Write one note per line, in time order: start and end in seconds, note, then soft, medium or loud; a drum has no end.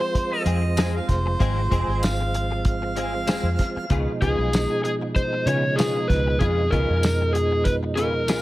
0.00 3.86 F3 medium
0.00 3.86 G#3 medium
0.00 3.86 C4 medium
0.00 3.86 F4 medium
0.00 0.35 C5 medium
0.00 0.42 C5 medium
0.00 muted clean electric guitar stroke soft
0.15 kick medium
0.15 closed hi-hat medium
0.32 0.93 D#5 medium
0.32 muted clean electric guitar stroke soft
0.45 0.99 F2 medium
0.45 0.63 F3 medium
0.45 0.63 G#3 medium
0.45 0.63 C4 medium
0.45 0.62 G#4 medium
0.45 closed hi-hat medium
0.63 muted clean electric guitar stroke soft
0.77 0.97 F3 medium
0.77 0.97 G#3 medium
0.77 0.97 C4 medium
0.77 0.98 G#4 medium
0.77 snare loud
0.77 closed hi-hat medium
0.77 tambourine loud
0.97 1.11 F5 medium
1.08 1.35 F1 medium
1.08 2.05 C5 medium
1.08 muted clean electric guitar stroke soft
1.08 kick medium
1.08 snare soft
1.08 closed hi-hat medium
1.26 muted clean electric guitar stroke medium
1.40 1.67 G#1 loud
1.40 1.60 F3 medium
1.40 1.60 G#3 medium
1.40 1.60 C4 medium
1.40 1.60 G#4 loud
1.40 kick loud
1.40 closed hi-hat medium
1.71 1.86 F1 medium
1.71 1.88 F3 medium
1.71 1.88 G#3 medium
1.71 1.88 C4 loud
1.71 1.87 G#4 medium
1.71 kick medium
1.71 closed hi-hat medium
1.88 3.27 G#1 medium
1.88 2.01 G#3 soft
1.88 2.02 C4 medium
1.88 2.02 G#4 medium
2.03 2.64 F5 medium
2.03 muted clean electric guitar stroke soft
2.03 snare loud
2.03 closed hi-hat medium
2.03 tambourine loud
2.20 muted clean electric guitar stroke soft
2.34 muted clean electric guitar stroke soft
2.34 closed hi-hat medium
2.51 muted clean electric guitar stroke soft
2.65 4.04 F5 medium
2.65 kick medium
2.65 closed hi-hat medium
2.82 muted clean electric guitar stroke soft
2.96 3.13 F3 medium
2.96 3.13 G#3 medium
2.96 3.13 C4 medium
2.96 3.13 G#4 medium
2.96 closed hi-hat medium
3.14 muted clean electric guitar stroke soft
3.27 3.42 F1 loud
3.27 3.47 F3 medium
3.27 3.48 G#3 medium
3.27 3.48 C4 medium
3.27 3.48 G#4 medium
3.27 snare loud
3.27 closed hi-hat medium
3.27 tambourine loud
3.43 3.56 F2 medium
3.59 muted clean electric guitar stroke soft
3.59 kick medium
3.59 snare soft
3.59 closed hi-hat medium
3.76 muted fingered electric bass stroke soft
3.76 muted clean electric guitar stroke soft
3.89 4.05 C#2 medium
3.89 8.42 B2 medium
3.89 4.10 C#3 medium
3.89 8.42 F3 medium
3.89 8.42 G#3 medium
3.89 4.10 B3 medium
3.89 8.42 D#4 medium
3.89 4.11 F4 medium
3.89 4.11 G#4 medium
3.89 kick loud
3.89 closed hi-hat medium
4.21 4.36 C#2 medium
4.21 4.39 C#3 medium
4.21 4.39 B3 medium
4.21 4.39 F4 medium
4.21 4.80 G#4 loud
4.21 4.38 G#4 medium
4.21 kick medium
4.21 closed hi-hat medium
4.38 4.65 B1 medium
4.38 4.52 B3 soft
4.38 4.52 F4 soft
4.38 4.53 G#4 soft
4.53 muted clean electric guitar stroke soft
4.53 snare loud
4.53 closed hi-hat medium
4.53 tambourine loud
4.70 muted clean electric guitar stroke soft
4.84 4.92 G#4 medium
4.84 muted clean electric guitar stroke soft
4.84 closed hi-hat medium
5.01 muted clean electric guitar stroke soft
5.16 5.48 C5 loud
5.16 kick medium
5.16 closed hi-hat medium
5.33 muted clean electric guitar stroke soft
5.46 5.99 C#3 medium
5.46 5.63 C#3 medium
5.46 5.64 B3 medium
5.46 5.63 F4 medium
5.46 5.63 G#4 medium
5.46 5.78 C#5 medium
5.46 closed hi-hat medium
5.64 muted clean electric guitar stroke soft
5.76 5.98 C#3 medium
5.76 5.98 B3 medium
5.76 5.98 F4 medium
5.76 6.09 G#4 medium
5.76 5.98 G#4 medium
5.76 closed hi-hat medium
5.76 tambourine loud
5.80 snare loud
6.08 6.36 C#2 medium
6.08 6.37 B4 loud
6.08 muted clean electric guitar stroke soft
6.08 kick medium
6.08 snare soft
6.08 closed hi-hat medium
6.27 muted clean electric guitar stroke soft
6.39 6.67 F2 loud
6.39 6.60 C#3 medium
6.39 6.61 B3 medium
6.39 6.61 F4 medium
6.39 6.72 G#4 loud
6.39 6.61 G#4 medium
6.39 kick loud
6.39 closed hi-hat medium
6.71 6.87 C#2 medium
6.71 6.89 C#3 medium
6.71 6.89 B3 medium
6.71 6.89 F4 medium
6.71 6.88 G#4 medium
6.71 7.35 A#4 loud
6.71 kick medium
6.71 closed hi-hat soft
6.89 8.27 F2 medium
6.89 7.03 B3 soft
6.89 7.03 F4 soft
6.89 7.03 G#4 medium
7.03 muted clean electric guitar stroke soft
7.03 snare loud
7.03 closed hi-hat medium
7.03 tambourine loud
7.21 muted clean electric guitar stroke soft
7.33 7.66 G#4 medium
7.33 muted clean electric guitar stroke soft
7.33 closed hi-hat medium
7.51 muted clean electric guitar stroke soft
7.64 7.73 B4 loud
7.64 kick medium
7.64 closed hi-hat medium
7.83 muted clean electric guitar stroke soft
7.95 8.14 C#3 medium
7.95 8.14 B3 medium
7.95 8.13 F4 medium
7.95 8.13 G#4 medium
7.95 8.42 A#4 loud
7.95 closed hi-hat medium
8.14 muted clean electric guitar stroke soft
8.27 8.42 C#2 medium
8.27 8.42 C#3 medium
8.27 8.42 B3 medium
8.27 8.42 F4 medium
8.27 8.42 G#4 medium
8.27 snare loud
8.27 closed hi-hat medium
8.27 tambourine loud